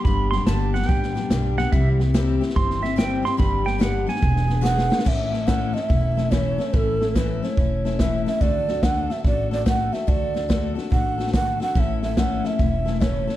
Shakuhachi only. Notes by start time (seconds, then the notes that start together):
4.63 F#5
5.05 E5 F#5
5.47 F#5
5.74 E5
6.31 C#5
6.73 A4 B4
7.15 B4
7.29 B4
7.43 C#5
7.99 E5
8.26 E5
8.41 D5
8.83 F#5
9.12 E5
9.27 D5
9.53 D5
9.68 F#5
9.93 E5
10.08 D5
10.92 F#5
11.35 F#5
11.62 F#5
11.75 F#5
11.80 E5
12.03 E5
12.19 F#5
12.46 E5
13.02 C#5